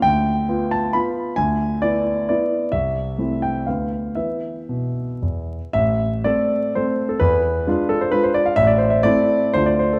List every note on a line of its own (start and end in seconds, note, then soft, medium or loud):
0.02 0.47 D2 medium
0.02 0.71 G5 loud
0.49 0.90 B3 soft
0.49 0.90 F4 medium
0.71 0.94 A5 medium
0.93 1.33 B3 medium
0.93 1.33 F4 medium
0.93 1.37 B5 medium
1.36 1.81 D2 medium
1.36 1.81 G#5 loud
1.82 2.25 B3 soft
1.82 2.26 E4 medium
1.82 2.27 D5 medium
2.29 2.69 B3 medium
2.29 2.69 E4 medium
2.29 2.73 D5 medium
2.72 3.16 C2 medium
2.72 3.42 E5 medium
3.18 3.63 A3 soft
3.18 3.63 C4 soft
3.18 3.63 E4 soft
3.42 3.67 G5 medium
3.66 4.15 D2 soft
3.66 4.12 B3 soft
3.66 4.13 B4 soft
3.66 4.16 F5 medium
4.15 4.53 E3 soft
4.15 4.58 B3 soft
4.15 4.58 B4 soft
4.15 5.48 E5 medium
4.69 5.07 B2 soft
5.22 5.58 E2 soft
5.73 6.24 A1 medium
5.73 6.25 E5 loud
6.24 6.72 A3 medium
6.24 6.72 C4 soft
6.24 6.72 A4 medium
6.24 6.75 D5 medium
6.75 7.17 A3 soft
6.75 7.17 C4 soft
6.75 7.07 A4 soft
6.75 7.09 C5 medium
7.09 7.20 A4 medium
7.20 7.65 E2 medium
7.20 7.90 B4 loud
7.67 8.09 G#3 medium
7.67 8.10 D4 medium
7.67 8.10 F4 medium
7.89 8.01 A4 medium
8.01 8.13 C5 medium
8.12 8.53 G#3 soft
8.12 8.53 D4 medium
8.12 8.53 F4 medium
8.12 8.23 B4 loud
8.24 8.35 C5 medium
8.34 8.46 D5 medium
8.46 8.57 F5 medium
8.56 9.03 A1 medium
8.56 8.68 E5 loud
8.67 8.79 D5 medium
8.78 8.91 C5 medium
8.90 9.04 E5 medium
9.03 9.51 A3 medium
9.03 9.51 C4 medium
9.03 9.52 E4 medium
9.03 9.55 D5 loud
9.53 9.99 D2 medium
9.53 9.99 A3 soft
9.53 9.99 D4 soft
9.53 9.99 F4 soft
9.53 9.67 C5 loud
9.66 9.80 D5 medium
9.79 9.93 C5 medium
9.93 9.99 A4 medium